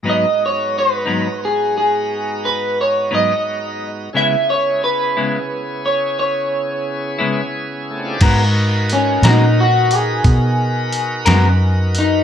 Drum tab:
CC |------------|------------|x-----------|
HH |------------|------------|x-xx-xx-xx-x|
SD |------------|------------|---o-----o--|
BD |------------|------------|o-----o-----|